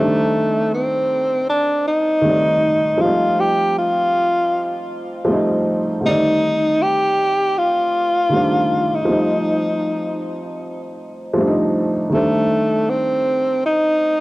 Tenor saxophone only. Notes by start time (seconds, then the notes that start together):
0.00 A3
0.74 C4
1.49 D4
1.87 D#4
3.02 F4
3.40 G4
3.78 F4
6.06 D#4
6.82 G4
7.58 F4
8.95 D#4
12.14 A3
12.90 C4
13.66 D#4